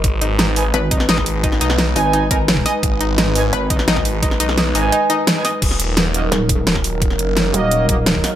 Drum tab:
CC |----------------|----------------|----------------|----------------|
HH |x-x-x-o-x-x-x-o-|x-x-x-o-x-x-x-o-|x-x-x-o-x-x-x-o-|x-x-x-o-x-x-x-o-|
SD |----o------ooo--|-o-oo-------o-o-|----o------ooo--|-o-oo-------o-o-|
BD |o---------o--o--|o---------o--o--|o---------o--o--|o---------------|

CC |x---------------|----------------|
HH |x-x-x-x-x-x-x-o-|x-x-x-x-x-x-x-o-|
SD |-o--o---o---oo--|-o--o-------o-o-|
BD |o---------o--o--|o---------o--o--|